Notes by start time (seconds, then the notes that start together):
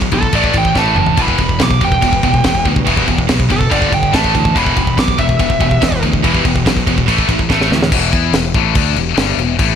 Already playing: B1 E2 B2
0.02 kick
0.12 B1 E2 B2 A4, kick, crash
0.23 kick
0.33 A1 A2 E3 A3 D5, kick, crash
0.44 kick
0.53 A1 A2 E3, kick, crash
0.58 G5
0.65 kick
0.75 A1 A2 E3 A3 A5, kick, snare
0.96 F#1 A2 E3, mid tom
1.06 floor tom
1.17 E1 E2 B2 E3 B3 G4 B4, kick, crash
1.22 B5
1.28 kick
1.38 E1 E2 B2, kick, crash
1.49 kick
1.59 B1 E2 B2, kick, snare, crash
1.63 D6
1.71 kick
1.81 E1 E2 B2 G5, kick, crash
1.92 kick
2.02 E1 E2 B2, kick, crash
2.13 kick
2.23 E1 E2 B2, kick, crash
2.34 kick
2.44 E1 E2 B2, kick, snare, crash
2.55 kick
2.65 D2 E2 B2, kick, crash
2.76 kick
2.87 E1 E2 B2 E3, kick, crash
2.97 kick
3.08 E1 E2 B2, kick, crash
3.18 kick
3.29 B1 E2 B2, kick, snare, crash
3.40 kick
3.50 F#1 E2 B2 A4, kick, crash
3.61 kick
3.70 G1 G2 D3 G3 D5, kick, crash
3.82 kick
3.92 G1 G2 D3 G5, kick, crash
4.03 kick
4.12 A1 A2 E3 A3 A4 E5 A5, kick, snare, crash
4.24 kick
4.33 D2 A2 E3, kick, crash
4.45 kick
4.55 E1 E2 B2 E3 B3 G4 B4 B5, kick, crash
4.66 kick
4.77 E1 E2 B2, kick, crash
4.87 kick
4.97 B1 E2 B2 D6, kick, snare, crash
5.08 kick
5.18 E1 E2 B2 E5, kick, crash
5.29 kick
5.39 E1 E2 B2, kick, crash
5.50 kick
5.60 E1 E2 B2, kick, crash
5.71 kick
5.81 E1 E2 B2, kick, snare, crash
5.92 kick
6.03 D2 E2 B2, kick, crash
6.13 kick
6.23 E1 E2 B2 E3, kick, crash
6.35 kick
6.45 E1 E2 B2, kick, crash
6.56 kick
6.66 B1 E2 B2, kick, snare, crash
6.77 kick
6.87 E1 E2 B2, kick, crash
6.98 kick
7.08 A1 A2 E3 A3 A4 E5, kick, crash
7.18 kick
7.29 A1 A2 E3, kick, crash
7.39 kick
7.50 A1 A2 E3 A3, kick, snare
7.61 snare
7.71 D2 A2 E3, snare
7.83 snare
7.91 E1 E2 B2 E3 B3 G4 E5, kick, crash
8.13 E2 E3 B3 E4, kick, crash
8.33 E1 E2 B2, snare, crash
8.54 A1 A2 E3 A3, kick, crash
8.75 D2 D3 A3 D4, kick, crash
8.96 E1 E2 B2, crash
9.17 G1 G2 D3 G3, snare, crash
9.38 E1 E2 B2, crash
9.59 A1 A2 E3 A3, kick, crash